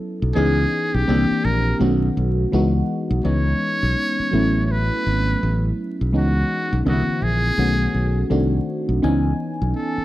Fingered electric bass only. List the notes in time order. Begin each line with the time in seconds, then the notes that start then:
0.22 B1
0.37 C#2
0.94 B1
1.09 C2
1.31 muted fingered electric bass stroke
1.45 A#1
1.81 B1
2.17 B1
2.53 C#2
3.11 B1
3.25 C#2
3.83 B1
4.20 muted fingered electric bass stroke
4.33 A1
5.07 G#1
5.43 A1
6.01 B1
6.15 C#2
6.73 B1
6.86 C2
7.08 muted fingered electric bass stroke
7.22 A#1
7.58 B1
7.94 B1
8.31 C2
8.89 B1
9.04 C#2
9.62 B1
9.98 muted fingered electric bass stroke